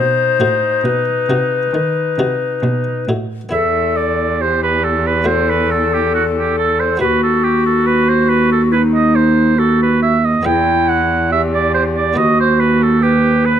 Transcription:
Already playing: harpsichord B2, cello B2, oboe D#4, recorder C5
0.39 cello A2, harpsichord A2 D#4 F#4
0.84 cello B2, harpsichord B2, recorder B4
1.29 cello C3, harpsichord C3 D#4 F#4
1.73 cello D#3, harpsichord D#3
2.18 cello C3, harpsichord C3 D#4 F#4
2.63 cello B2, harpsichord B2
3.07 cello A2, harpsichord A2 D#4 F#4
3.49 harpsichord E2 B3 E4, cello E2, oboe E5
3.53 recorder A4
3.97 oboe D5
4.41 recorder G4, oboe C5
4.63 oboe B4
4.84 oboe A4
5.07 oboe B4
5.24 harpsichord A3 F#4, recorder A4, oboe C5
5.50 oboe B4
5.71 oboe A4
5.93 oboe G4
6.14 oboe F#4
6.37 oboe G4
6.58 oboe A4
6.80 oboe C5
6.97 cello D#2, harpsichord D#2 B3 F#4, recorder G4, oboe B4
7.04 recorder F#4
7.23 oboe A4
7.43 oboe G4
7.66 oboe A4
7.86 oboe B4
8.09 oboe C5
8.29 oboe B4
8.52 oboe A4
8.72 recorder E4, oboe B4
8.76 recorder D#4
8.94 oboe D#5
9.16 oboe C5
9.57 recorder F#4, oboe A4
9.82 oboe B4
10.02 oboe E5
10.25 oboe D#5
10.43 cello E2, harpsichord E2 B3 B4, recorder E4, oboe G5
10.89 oboe F#5
11.31 recorder G4, oboe E5
11.54 oboe D5
11.74 oboe C5
11.97 oboe D5
12.14 cello D#2, harpsichord D#2 B3 B4, recorder F#4, oboe D#5
12.40 oboe C5
12.60 oboe B4
12.82 oboe A4
13.02 oboe G4, recorder B4
13.45 oboe B4

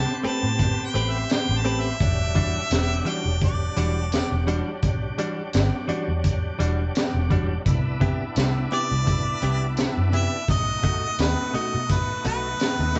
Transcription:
Already playing: tonewheel organ B3 C4 G4, harmonica A5
0.24 clean electric guitar A3 C4 G4 B4, muted fingered electric bass stroke, closed hi-hat
0.28 harmonica A5
0.43 fingered electric bass A2
0.59 kick, closed hi-hat
0.86 harmonica G5
0.94 fingered electric bass A1, clean electric guitar A3 C4 G4 B4, closed hi-hat
1.10 harmonica E5
1.30 harmonica G5, snare, closed hi-hat, tambourine
1.49 fingered electric bass A1
1.57 harmonica A5
1.65 clean electric guitar A3 C4 G4 B4, closed hi-hat
1.80 harmonica E5
2.00 fingered electric bass E1, tonewheel organ F#3 G3 D4, kick, closed hi-hat
2.35 clean electric guitar E3 G3 D4 F#4, kick, closed hi-hat
2.71 fingered electric bass E1, snare, closed hi-hat, tambourine
3.05 clean electric guitar E3 G3 D4 F#4, harmonica G5, closed hi-hat
3.25 fingered electric bass E1
3.41 harmonica D5, kick, closed hi-hat
3.77 fingered electric bass E1, clean electric guitar E3 G3 D4 F#4, closed hi-hat
4.12 snare, closed hi-hat, tambourine
4.32 fingered electric bass E1
4.47 clean electric guitar E3 G3 D4 F#4, closed hi-hat
4.83 fingered electric bass B1, kick, closed hi-hat
5.18 clean electric guitar E3 G3 D4 F#4, closed hi-hat
5.53 fingered electric bass G1, snare, closed hi-hat, tambourine
5.88 clean electric guitar E3 G3 D4 F#4, muted fingered electric bass stroke, closed hi-hat
6.08 fingered electric bass E2
6.24 kick, closed hi-hat
6.59 fingered electric bass E1, clean electric guitar E3 G3 D4 F#4, closed hi-hat
6.95 snare, closed hi-hat, tambourine
7.14 fingered electric bass E1
7.30 clean electric guitar E3 G3 D4 F#4, kick, closed hi-hat
7.65 fingered electric bass C2, tonewheel organ B3 D4 E4, kick, closed hi-hat
8.00 clean electric guitar C3 B3 E4 G4, kick, closed hi-hat
8.36 fingered electric bass C2, snare, closed hi-hat, tambourine
8.72 clean electric guitar C3 B3 E4 G4, harmonica D5, closed hi-hat
8.91 fingered electric bass C2
9.07 kick, closed hi-hat
9.42 fingered electric bass C2, clean electric guitar C3 B3 E4 G4, closed hi-hat
9.77 snare, closed hi-hat, tambourine
9.97 fingered electric bass F#2
10.13 clean electric guitar C3 B3 E4 G4, harmonica E5, closed hi-hat
10.48 fingered electric bass B1, tonewheel organ A3 D#4 F#4, harmonica D#5, kick, closed hi-hat
10.83 clean electric guitar B2 A3 D#4 F#4, kick, closed hi-hat
11.19 fingered electric bass D#2, harmonica B4, snare, closed hi-hat, tambourine
11.54 clean electric guitar B2 A3 D#4 F#4, harmonica D#5, muted fingered electric bass stroke, closed hi-hat
11.74 fingered electric bass B2
11.89 harmonica B4, kick, closed hi-hat
12.25 fingered electric bass B1, clean electric guitar B2 A3 D#4 F#4, harmonica B4, closed hi-hat
12.60 snare, closed hi-hat, tambourine
12.79 fingered electric bass D#2
12.95 clean electric guitar B2 A3 D#4, closed hi-hat

